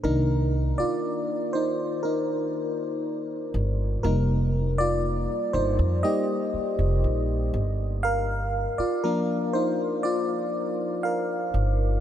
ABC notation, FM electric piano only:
X:1
M:4/4
L:1/16
Q:1/4=60
K:Cm
V:1 name="FM electric piano"
[EB]3 [Fd]3 [Ec]2 [EB]6 z2 | [EB]3 [Fd]3 [Ec]2 [Ge]6 z2 | [Bf]3 [Fd] [DB]2 [Ec]2 [Fd]4 [Bf]3 z |]
V:2 name="FM electric piano"
[E,B,D]16 | [G,B,E]6 z2 [G,B,E]2 z6 | z4 [F,B,D]2 z8 z2 |]